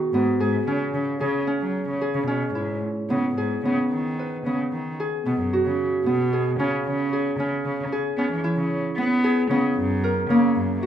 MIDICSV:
0, 0, Header, 1, 3, 480
1, 0, Start_track
1, 0, Tempo, 539568
1, 600, Time_signature, 11, 3, 24, 8
1, 4687, Tempo, 530035
1, 9752, End_track
2, 0, Start_track
2, 0, Title_t, "Harp"
2, 0, Program_c, 0, 46
2, 0, Note_on_c, 0, 59, 71
2, 0, Note_on_c, 0, 66, 69
2, 0, Note_on_c, 0, 68, 67
2, 0, Note_on_c, 0, 71, 69
2, 122, Note_off_c, 0, 59, 0
2, 125, Note_on_c, 0, 59, 68
2, 284, Note_off_c, 0, 71, 0
2, 355, Note_off_c, 0, 68, 0
2, 359, Note_on_c, 0, 68, 69
2, 599, Note_on_c, 0, 61, 78
2, 1068, Note_off_c, 0, 68, 0
2, 1072, Note_on_c, 0, 68, 72
2, 1306, Note_off_c, 0, 61, 0
2, 1310, Note_on_c, 0, 61, 69
2, 1788, Note_off_c, 0, 68, 0
2, 1791, Note_on_c, 0, 68, 71
2, 1819, Note_off_c, 0, 66, 0
2, 2021, Note_off_c, 0, 61, 0
2, 2025, Note_on_c, 0, 61, 75
2, 2269, Note_on_c, 0, 64, 61
2, 2754, Note_off_c, 0, 59, 0
2, 2758, Note_on_c, 0, 59, 70
2, 3000, Note_off_c, 0, 68, 0
2, 3003, Note_on_c, 0, 68, 68
2, 3246, Note_off_c, 0, 59, 0
2, 3250, Note_on_c, 0, 59, 74
2, 3729, Note_on_c, 0, 71, 64
2, 3967, Note_off_c, 0, 59, 0
2, 3970, Note_on_c, 0, 59, 69
2, 4442, Note_off_c, 0, 68, 0
2, 4446, Note_on_c, 0, 68, 71
2, 4592, Note_off_c, 0, 64, 0
2, 4603, Note_off_c, 0, 61, 0
2, 4679, Note_off_c, 0, 59, 0
2, 4683, Note_on_c, 0, 59, 63
2, 4926, Note_on_c, 0, 66, 65
2, 5402, Note_off_c, 0, 59, 0
2, 5405, Note_on_c, 0, 59, 74
2, 5568, Note_off_c, 0, 71, 0
2, 5644, Note_off_c, 0, 68, 0
2, 5648, Note_on_c, 0, 68, 68
2, 5889, Note_on_c, 0, 61, 80
2, 6368, Note_off_c, 0, 68, 0
2, 6371, Note_on_c, 0, 68, 68
2, 6611, Note_off_c, 0, 61, 0
2, 6614, Note_on_c, 0, 61, 75
2, 7088, Note_off_c, 0, 68, 0
2, 7091, Note_on_c, 0, 68, 74
2, 7133, Note_off_c, 0, 66, 0
2, 7323, Note_off_c, 0, 61, 0
2, 7327, Note_on_c, 0, 61, 74
2, 7560, Note_on_c, 0, 64, 75
2, 8043, Note_off_c, 0, 59, 0
2, 8046, Note_on_c, 0, 59, 79
2, 8279, Note_off_c, 0, 68, 0
2, 8283, Note_on_c, 0, 68, 78
2, 8521, Note_off_c, 0, 59, 0
2, 8524, Note_on_c, 0, 59, 82
2, 9005, Note_on_c, 0, 70, 73
2, 9059, Note_off_c, 0, 59, 0
2, 9246, Note_on_c, 0, 58, 80
2, 9720, Note_on_c, 0, 66, 77
2, 9752, Note_off_c, 0, 58, 0
2, 9752, Note_off_c, 0, 61, 0
2, 9752, Note_off_c, 0, 64, 0
2, 9752, Note_off_c, 0, 66, 0
2, 9752, Note_off_c, 0, 68, 0
2, 9752, Note_off_c, 0, 70, 0
2, 9752, End_track
3, 0, Start_track
3, 0, Title_t, "Cello"
3, 0, Program_c, 1, 42
3, 120, Note_on_c, 1, 44, 82
3, 223, Note_off_c, 1, 44, 0
3, 362, Note_on_c, 1, 44, 74
3, 563, Note_off_c, 1, 44, 0
3, 599, Note_on_c, 1, 49, 77
3, 700, Note_off_c, 1, 49, 0
3, 836, Note_on_c, 1, 49, 70
3, 938, Note_off_c, 1, 49, 0
3, 1075, Note_on_c, 1, 49, 86
3, 1277, Note_off_c, 1, 49, 0
3, 1436, Note_on_c, 1, 54, 70
3, 1637, Note_off_c, 1, 54, 0
3, 1671, Note_on_c, 1, 49, 75
3, 1773, Note_off_c, 1, 49, 0
3, 1910, Note_on_c, 1, 49, 80
3, 2013, Note_off_c, 1, 49, 0
3, 2031, Note_on_c, 1, 47, 74
3, 2236, Note_off_c, 1, 47, 0
3, 2269, Note_on_c, 1, 44, 77
3, 2477, Note_off_c, 1, 44, 0
3, 2758, Note_on_c, 1, 49, 77
3, 2966, Note_off_c, 1, 49, 0
3, 2999, Note_on_c, 1, 44, 69
3, 3208, Note_off_c, 1, 44, 0
3, 3241, Note_on_c, 1, 49, 82
3, 3347, Note_off_c, 1, 49, 0
3, 3478, Note_on_c, 1, 51, 73
3, 3890, Note_off_c, 1, 51, 0
3, 3965, Note_on_c, 1, 49, 77
3, 4069, Note_off_c, 1, 49, 0
3, 4204, Note_on_c, 1, 51, 72
3, 4409, Note_off_c, 1, 51, 0
3, 4680, Note_on_c, 1, 47, 77
3, 4785, Note_off_c, 1, 47, 0
3, 4804, Note_on_c, 1, 42, 72
3, 4908, Note_off_c, 1, 42, 0
3, 5042, Note_on_c, 1, 49, 69
3, 5250, Note_off_c, 1, 49, 0
3, 5404, Note_on_c, 1, 47, 89
3, 5815, Note_off_c, 1, 47, 0
3, 5880, Note_on_c, 1, 49, 97
3, 5988, Note_off_c, 1, 49, 0
3, 6128, Note_on_c, 1, 49, 84
3, 6535, Note_off_c, 1, 49, 0
3, 6602, Note_on_c, 1, 49, 82
3, 6708, Note_off_c, 1, 49, 0
3, 6848, Note_on_c, 1, 49, 80
3, 7052, Note_off_c, 1, 49, 0
3, 7320, Note_on_c, 1, 59, 84
3, 7425, Note_off_c, 1, 59, 0
3, 7443, Note_on_c, 1, 52, 78
3, 7546, Note_off_c, 1, 52, 0
3, 7677, Note_on_c, 1, 49, 72
3, 7883, Note_off_c, 1, 49, 0
3, 8038, Note_on_c, 1, 59, 97
3, 8446, Note_off_c, 1, 59, 0
3, 8521, Note_on_c, 1, 49, 89
3, 8624, Note_off_c, 1, 49, 0
3, 8757, Note_on_c, 1, 42, 90
3, 9166, Note_off_c, 1, 42, 0
3, 9236, Note_on_c, 1, 49, 89
3, 9341, Note_off_c, 1, 49, 0
3, 9477, Note_on_c, 1, 42, 81
3, 9684, Note_off_c, 1, 42, 0
3, 9752, End_track
0, 0, End_of_file